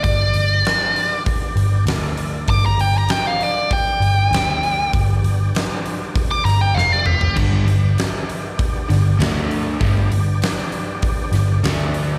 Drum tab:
CC |----------------|----------------|----------------|x---------------|
HH |o-o-o-o-o-o-o-o-|o-o-o-o-o-o-o-o-|o-o-o-o-o-o-----|--o-o-o-o-o-o-o-|
SD |----o-------o---|----o-------o---|----o-----o-o---|----o-----o-o---|
T2 |----------------|----------------|--------------o-|----------------|
FT |----------------|----------------|---------------o|----------------|
BD |o-------o-------|o-------o-------|o-------o-------|o-------o-------|

CC |----------------|
HH |o-o-o-o-o-o-o-o-|
SD |----o-----o-o---|
T2 |----------------|
FT |----------------|
BD |o-------o-------|